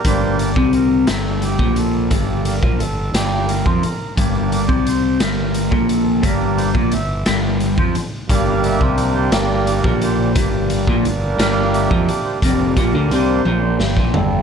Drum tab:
HH |x-x-x-x-x-x-|x-x-x-x-x-x-|x-x-x-x-x-x-|x-x-x-x-x-x-|
SD |------o-----|------o-----|------o-----|------o-----|
T1 |------------|------------|------------|------------|
FT |------------|------------|------------|------------|
BD |o--o-----o--|o--o-----o--|o--o-----o--|o--o-----o--|

HH |x-x-x-x-x-x-|x-x-x-x-x-x-|x-x-x-------|
SD |------o-----|------o-----|--------o---|
T1 |------------|------------|------o-----|
FT |------------|------------|----------o-|
BD |o--o-----o--|o--o-----o--|o-o------o--|